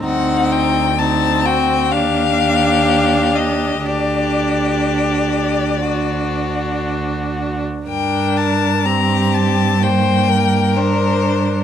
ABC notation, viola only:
X:1
M:4/4
L:1/8
Q:1/4=62
K:Gm
V:1 name="Viola"
C2 C2 D4 | D4 D4 | D2 C2 B,2 D2 |]